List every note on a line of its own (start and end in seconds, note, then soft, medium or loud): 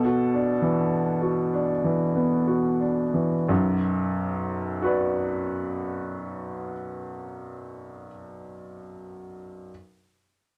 0.00 3.44 B2 medium
0.00 2.80 A4 medium
0.05 0.51 F#4 soft
0.34 0.80 D4 soft
0.62 1.58 E3 soft
1.22 1.71 F#4 soft
1.54 2.03 D4 soft
1.84 2.34 E3 soft
2.15 2.67 B3 soft
2.48 3.01 F#4 soft
2.80 3.35 D4 soft
3.14 3.48 E3 soft
3.49 6.72 B1 medium
3.49 6.72 F#2 medium
4.82 8.06 F#4 soft
4.82 8.08 B4 soft
4.82 8.10 D5 soft